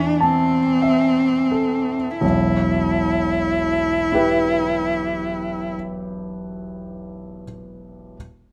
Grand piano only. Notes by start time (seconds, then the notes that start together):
Already playing: E2 E3 E5
0.20 A5
0.82 E5
1.51 A4
2.21 E1 B1
4.12 E4 G4 B4